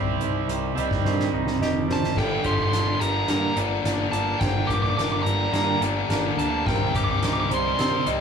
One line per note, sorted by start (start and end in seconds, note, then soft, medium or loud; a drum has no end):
0.00 0.16 C2 medium
0.00 0.74 C3 medium
0.00 1.33 C3 medium
0.00 0.20 D#3 medium
0.00 0.19 G3 medium
0.00 0.75 G3 medium
0.00 0.74 C4 medium
0.00 0.48 D#4 medium
0.00 2.12 D#4 medium
0.00 0.76 G4 medium
0.00 2.12 G4 medium
0.00 2.12 C5 medium
0.00 0.20 D5 medium
0.00 2.12 G5 medium
0.21 0.44 C2 medium
0.21 0.76 G3 medium
0.21 0.77 C5 medium
0.21 closed hi-hat medium
0.48 0.71 C2 medium
0.48 1.05 D#3 medium
0.48 closed hi-hat medium
0.75 1.00 C2 medium
0.75 2.16 C3 medium
0.75 1.87 G3 medium
0.75 2.16 G3 medium
0.75 2.14 C4 medium
0.75 1.05 D#5 medium
0.75 closed hi-hat medium
0.91 kick medium
0.91 snare soft
1.04 1.28 G2 medium
1.04 2.17 D#3 medium
1.04 1.61 C5 medium
1.04 snare soft
1.19 snare soft
1.32 1.56 C2 medium
1.32 2.17 D#4 medium
1.47 snare medium
1.60 2.07 F1 medium
1.60 2.18 G4 medium
1.60 1.89 D#5 medium
1.60 snare medium
1.88 2.16 G3 medium
1.88 2.17 C5 medium
1.88 snare medium
1.92 2.18 A5 medium
2.03 snare medium
2.15 2.38 G1 medium
2.15 3.57 G2 medium
2.15 2.24 G2 medium
2.15 2.25 D3 medium
2.15 6.61 A#3 medium
2.15 6.61 D4 medium
2.15 8.21 G4 medium
2.15 2.45 A4 medium
2.15 6.61 G5 medium
2.15 2.46 G5 medium
2.15 kick medium
2.15 snare soft
2.15 crash loud
2.25 2.32 G2 soft
2.25 2.32 D3 soft
2.32 2.39 G2 medium
2.32 2.40 D3 medium
2.39 2.47 G2 soft
2.39 2.48 D3 soft
2.44 2.67 G1 medium
2.44 2.55 G2 medium
2.44 4.68 G4 medium
2.44 3.02 A4 medium
2.44 2.53 C6 medium
2.44 kick medium
2.44 closed hi-hat medium
2.48 2.55 D3 medium
2.54 2.62 G2 soft
2.54 2.63 D3 medium
2.54 2.62 C6 medium
2.59 2.70 G2 medium
2.59 kick medium
2.63 2.70 D3 medium
2.63 2.68 C6 medium
2.69 2.94 G1 medium
2.69 2.78 G2 soft
2.69 2.78 D3 medium
2.69 2.77 C6 medium
2.73 3.84 D4 medium
2.73 snare soft
2.73 closed hi-hat medium
2.78 2.84 G2 medium
2.78 2.86 D3 medium
2.78 2.87 C6 medium
2.85 2.92 G2 soft
2.85 2.94 D3 medium
2.85 2.93 C6 medium
2.94 3.00 G2 medium
2.94 3.02 D3 medium
2.94 3.00 C6 medium
3.00 3.22 G1 medium
3.00 3.08 G2 medium
3.00 3.09 D3 medium
3.00 3.57 G3 medium
3.00 3.27 A#4 medium
3.00 3.29 A#5 medium
3.00 closed hi-hat medium
3.09 3.16 G2 medium
3.09 3.15 D3 medium
3.16 3.23 G2 soft
3.16 3.23 D3 medium
3.23 3.31 G2 medium
3.23 3.32 D3 medium
3.28 3.50 G2 medium
3.28 3.39 G2 soft
3.28 4.12 A#3 medium
3.28 3.57 A#4 medium
3.28 3.55 A#5 medium
3.28 snare soft
3.28 closed hi-hat medium
3.33 3.40 D3 medium
3.39 3.46 G2 medium
3.39 3.47 D3 medium
3.47 3.54 G2 medium
3.47 3.55 D3 medium
3.54 3.79 G1 medium
3.54 3.61 G2 medium
3.54 3.63 D3 medium
3.54 5.25 G3 medium
3.54 3.84 D5 medium
3.54 closed hi-hat medium
3.62 3.69 G2 medium
3.62 3.70 D3 medium
3.69 3.77 G2 medium
3.69 3.78 D3 medium
3.77 3.84 G2 soft
3.77 3.86 D3 medium
3.84 4.06 G1 medium
3.84 3.92 G2 medium
3.84 3.93 D3 medium
3.84 4.96 D4 medium
3.84 4.41 D5 medium
3.84 snare soft
3.84 closed hi-hat medium
3.93 3.99 G2 soft
3.93 4.01 D3 soft
4.00 4.08 G2 medium
4.00 4.09 D3 medium
4.08 4.34 G1 medium
4.08 4.16 G2 soft
4.08 4.16 D3 medium
4.08 4.39 A5 medium
4.13 4.22 G2 medium
4.13 4.24 D3 medium
4.13 5.52 A#3 medium
4.13 closed hi-hat medium
4.23 4.30 G2 soft
4.23 4.31 D3 soft
4.31 4.39 G2 medium
4.31 4.39 D3 medium
4.40 4.63 G1 medium
4.40 4.47 G2 medium
4.40 5.81 G2 medium
4.40 4.47 D3 medium
4.40 4.69 C5 medium
4.40 4.69 G5 medium
4.40 kick medium
4.40 snare soft
4.40 closed hi-hat medium
4.48 4.55 G2 soft
4.48 4.56 D3 soft
4.55 4.63 G2 medium
4.55 4.64 D3 medium
4.64 4.70 G2 soft
4.64 4.70 D3 soft
4.64 4.74 D6 medium
4.68 4.92 G1 medium
4.68 4.78 G2 medium
4.68 4.78 D3 medium
4.68 6.94 G4 medium
4.68 4.96 A#4 medium
4.68 kick medium
4.68 closed hi-hat medium
4.74 4.82 D6 medium
4.78 4.86 G2 soft
4.78 4.86 D3 soft
4.82 4.90 D6 medium
4.82 kick medium
4.87 4.93 G2 medium
4.87 4.94 D3 medium
4.87 4.97 D6 medium
4.93 5.01 G2 soft
4.93 5.02 D3 soft
4.97 5.19 G1 medium
4.97 6.09 D4 medium
4.97 5.54 A#4 medium
4.97 5.04 D6 medium
4.97 snare soft
4.97 closed hi-hat medium
5.03 5.10 G2 medium
5.03 5.10 D3 medium
5.03 5.12 D6 medium
5.10 5.17 G2 soft
5.10 5.18 D3 soft
5.10 5.20 D6 medium
5.17 5.25 G2 medium
5.17 5.26 D3 medium
5.23 5.47 G1 medium
5.23 5.32 G2 medium
5.23 5.34 D3 soft
5.23 5.81 G3 medium
5.23 5.52 A#5 medium
5.23 closed hi-hat medium
5.32 5.40 G2 medium
5.32 5.42 D3 medium
5.40 5.48 G2 medium
5.40 5.49 D3 medium
5.49 5.56 G2 medium
5.49 5.75 G2 medium
5.49 5.57 D3 medium
5.49 6.37 A#3 medium
5.53 5.63 G2 soft
5.53 5.64 D3 medium
5.53 6.10 D5 medium
5.53 5.79 A#5 medium
5.53 snare medium
5.53 closed hi-hat medium
5.64 5.71 G2 medium
5.64 5.72 D3 medium
5.72 5.79 G2 soft
5.72 5.80 D3 soft
5.81 6.03 G1 medium
5.81 5.87 G2 medium
5.81 5.87 D3 medium
5.81 7.49 G3 medium
5.81 closed hi-hat medium
5.87 5.94 G2 medium
5.87 5.95 D3 medium
5.94 6.02 G2 medium
5.94 6.02 D3 medium
6.03 6.10 G2 soft
6.03 6.10 D3 soft
6.09 6.31 G1 medium
6.09 6.18 G2 medium
6.09 6.18 D3 medium
6.09 6.66 D4 medium
6.09 6.65 A#4 medium
6.09 snare medium
6.09 closed hi-hat medium
6.18 6.25 G2 soft
6.18 6.26 D3 soft
6.26 6.34 G2 medium
6.26 6.34 D3 medium
6.34 6.68 D2 medium
6.34 6.42 G2 soft
6.34 6.41 D3 soft
6.34 6.66 A#3 medium
6.39 6.47 G2 medium
6.39 6.50 D3 medium
6.39 6.66 A5 medium
6.39 closed hi-hat medium
6.48 6.56 G2 soft
6.48 6.56 D3 soft
6.57 6.65 G2 soft
6.57 6.65 D3 soft
6.66 6.88 C2 loud
6.66 8.06 C3 medium
6.66 6.73 C3 medium
6.66 6.75 G3 medium
6.66 8.21 D#4 medium
6.66 6.93 A#4 medium
6.66 8.21 C5 medium
6.66 6.95 G5 medium
6.66 8.21 G5 medium
6.66 kick medium
6.66 snare medium
6.66 crash medium
6.74 6.81 C3 soft
6.74 6.82 G3 medium
6.82 6.89 C3 medium
6.82 6.90 G3 medium
6.89 6.97 C3 soft
6.89 6.97 G3 medium
6.95 7.17 C2 medium
6.95 7.04 C3 soft
6.95 7.05 G3 medium
6.95 8.21 G4 medium
6.95 7.51 A#4 medium
6.95 7.03 D6 medium
6.95 kick medium
6.95 closed hi-hat medium
7.04 7.11 C3 soft
7.04 7.12 G3 medium
7.04 7.11 D6 medium
7.09 7.19 C3 medium
7.09 7.18 D6 medium
7.09 kick medium
7.13 7.21 G3 medium
7.18 7.44 C2 medium
7.18 7.27 C3 soft
7.18 7.28 G3 medium
7.18 7.25 D6 medium
7.22 8.21 D#4 medium
7.22 7.33 D6 medium
7.22 snare medium
7.22 closed hi-hat medium
7.28 7.34 C3 medium
7.28 7.36 G3 medium
7.33 7.42 C3 soft
7.33 7.44 G3 medium
7.33 7.40 D6 medium
7.40 7.50 C3 medium
7.40 7.47 D6 medium
7.44 7.51 G3 medium
7.50 7.72 C2 medium
7.50 7.57 C3 soft
7.50 8.05 G3 medium
7.50 7.58 G3 medium
7.50 7.78 C5 medium
7.50 closed hi-hat medium
7.54 7.65 C3 medium
7.54 7.80 C6 medium
7.59 7.66 G3 medium
7.66 7.74 C3 soft
7.66 7.74 G3 medium
7.74 7.81 C3 medium
7.74 7.82 G3 medium
7.79 8.01 C3 medium
7.79 7.89 C3 medium
7.79 7.90 G3 medium
7.79 8.21 C4 medium
7.79 8.07 C5 medium
7.79 8.06 C6 medium
7.79 snare medium
7.79 closed hi-hat medium
7.89 7.97 C3 medium
7.89 7.97 G3 medium
7.97 8.04 C3 medium
7.97 8.05 G3 medium
8.05 8.21 C2 medium
8.05 8.11 C3 medium
8.05 8.21 G3 medium
8.05 8.13 G3 medium
8.05 8.21 D#5 medium
8.05 closed hi-hat medium
8.11 8.19 C3 soft
8.11 8.20 G3 medium